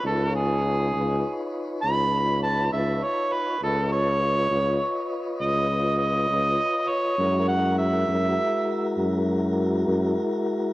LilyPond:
<<
  \new Staff \with { instrumentName = "Harmonica" } { \time 12/8 \key cis \dorian \tempo 4. = 67 a'8 gis'2 r8 b''4 a''8 e''8 cis''8 b'8 | a'8 cis''2 r8 dis''4 dis''4. cis''8~ | cis''8 fis''8 e''2 r2. | }
  \new Staff \with { instrumentName = "Tonewheel organ" } { \time 12/8 \key cis \dorian <dis' eis' b' cis''>1. | <eis' b' cis'' dis''>1. | <gis e' fis' ais'>1. | }
  \new Staff \with { instrumentName = "Tuba" } { \clef bass \time 12/8 \key cis \dorian cis,4. cis,8 r4 cis,4. cis,8 r4 | cis,4. cis,8 r4 cis,4. cis,8 r4 | fis,4. fis,8 r4 fis,4. fis,8 r4 | }
>>